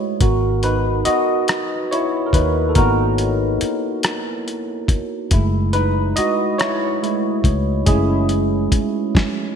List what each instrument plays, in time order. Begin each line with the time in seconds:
Already playing: tine electric piano G#3 A3 E4 F#4 C#5 D#5
0.21 fingered electric bass G#1, tine electric piano B3 F#4 A#4, kick, closed hi-hat
0.63 tine electric piano D#4 B4, closed hi-hat
1.05 tine electric piano F#4 D#5, muted fingered electric bass stroke, closed hi-hat
1.48 cross-stick, closed hi-hat
1.91 tine electric piano E4 C#5, closed hi-hat
2.26 tine electric piano A#4
2.33 fingered electric bass D#2, tine electric piano D#4 B4, kick, closed hi-hat
2.69 tine electric piano A4
2.75 fingered electric bass G#1, tine electric piano A#3 B3 D#4 F#4 A#4, kick, closed hi-hat
3.18 closed hi-hat
3.61 muted fingered electric bass stroke, closed hi-hat
4.03 cross-stick, closed hi-hat
4.48 closed hi-hat
4.88 kick, closed hi-hat
5.31 fingered electric bass F#1, tine electric piano G#3 A3 E4, kick, closed hi-hat
5.73 tine electric piano D#4 B4, closed hi-hat
6.16 tine electric piano F#4 D#5, muted fingered electric bass stroke, closed hi-hat
6.58 tine electric piano E4 C#5, cross-stick, closed hi-hat
7.03 tine electric piano G#3 A3 E4, closed hi-hat
7.44 fingered electric bass C#2, kick, closed hi-hat
7.86 fingered electric bass F#1, tine electric piano G#3 A3 C#4 E4 G#4, kick, closed hi-hat
8.29 closed hi-hat
8.72 muted fingered electric bass stroke, kick, closed hi-hat
9.15 kick, snare